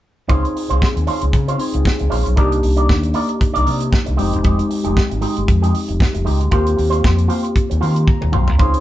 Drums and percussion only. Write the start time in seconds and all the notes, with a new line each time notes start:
0.29 kick, closed hi-hat
0.45 closed hi-hat
0.57 open hi-hat
0.71 closed hi-hat
0.82 kick, snare
0.97 closed hi-hat
1.07 open hi-hat
1.22 closed hi-hat
1.33 kick, closed hi-hat
1.48 closed hi-hat
1.59 open hi-hat
1.74 closed hi-hat
1.85 kick, snare
1.99 closed hi-hat
2.12 open hi-hat
2.26 closed hi-hat
2.37 kick, closed hi-hat
2.52 closed hi-hat
2.63 open hi-hat
2.77 closed hi-hat
2.89 kick, snare
3.03 closed hi-hat
3.14 open hi-hat
3.29 closed hi-hat
3.41 kick, closed hi-hat
3.56 closed hi-hat
3.67 open hi-hat
3.80 closed hi-hat
3.93 kick, snare
4.06 closed hi-hat
4.19 open hi-hat
4.33 closed hi-hat
4.44 kick, closed hi-hat
4.59 closed hi-hat
4.71 open hi-hat
4.85 closed hi-hat
4.97 kick, snare
5.11 closed hi-hat
5.22 open hi-hat
5.37 closed hi-hat
5.48 kick, closed hi-hat
5.64 closed hi-hat
5.75 open hi-hat
5.89 closed hi-hat
6.00 kick, snare
6.15 closed hi-hat
6.27 open hi-hat
6.41 closed hi-hat
6.51 kick, closed hi-hat
6.67 closed hi-hat
6.79 open hi-hat
6.93 closed hi-hat
7.04 kick, snare
7.18 closed hi-hat
7.30 open hi-hat
7.44 closed hi-hat
7.56 kick, closed hi-hat
7.71 closed hi-hat
7.83 open hi-hat
7.96 closed hi-hat
8.08 kick, high tom
8.22 mid tom
8.33 mid tom
8.48 floor tom
8.59 kick, closed hi-hat
8.74 closed hi-hat